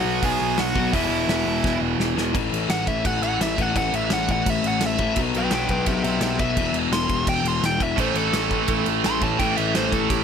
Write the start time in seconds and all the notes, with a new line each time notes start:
Already playing: B2 F#3 B3 F#4 F#5
0.04 B1
0.23 B1 G#4 G#5, kick, open hi-hat
0.41 B1
0.58 B1 F#4 F#5, snare, open hi-hat
0.74 B1 F#3 B3, kick
0.78 B2
0.91 E1 E2 B2 E3 E4, kick, open hi-hat
0.96 E5
1.09 E1
1.27 E1 E4 E5, snare, open hi-hat
1.46 E1
1.64 E1, kick, snare
1.81 E1
1.98 E1, snare
2.15 E1 E2 B2 E3, snare
2.33 A1 A2 E3 A3, kick, crash
2.52 A1, crash
2.69 A1 F#5, snare, crash
2.87 A1 E5, kick, crash
3.05 A1 F#5, kick, crash
3.22 A1 F#5, crash
3.39 A1 E5, snare, crash
3.58 A1 A2 E3 A3, kick, crash
3.62 F#5
3.75 A1 A2 E3 F#5, kick, crash
3.79 A3
3.93 A1 E5, crash
4.10 A1 F#5, snare, crash
4.28 A1 F#5, kick, crash
4.46 A1 E5, kick, crash
4.63 A1, crash
4.68 F#5
4.81 A1, snare, crash
4.86 E5
4.98 A1 A2 E3 A3, kick, crash
5.16 B1 B2 F#3, kick, crash
5.21 B3
5.34 B1 B4 G5, crash
5.51 B1 B4 G5, snare, crash
5.69 B1 B4 G5, kick, crash
5.86 B1 G4 E5, kick, crash
6.03 B1 G4 E5, crash
6.21 B1 G4 E5, snare, crash
6.39 B1 B2 F#3 B3 E5, kick, crash
6.57 E1 E2 B2 E3, kick, crash
6.72 E1, crash
6.90 E1 C6, snare, crash
7.09 E1, kick, crash
7.27 E1 G5, kick, crash
7.43 E1, crash
7.48 C6
7.62 E1 G5, snare, crash
7.78 E1 B2 E3, kick, crash
7.82 E2 E5
7.96 A1 A2 E3 A3, kick, crash
8.00 C5
8.14 A1 A4, crash
8.33 A1, snare, crash
8.51 A1, kick, crash
8.68 A1, kick, crash
8.86 A1, crash
9.04 A1 C6, snare, crash
9.21 A1 E3 A3 A5, kick, crash
9.25 A2
9.37 A1 A2 E3 G5, kick, crash
9.41 A3
9.57 A1 E5, crash
9.75 A1 C5, snare, crash
9.92 A1 A4, kick, crash
10.10 A1 G4, kick, crash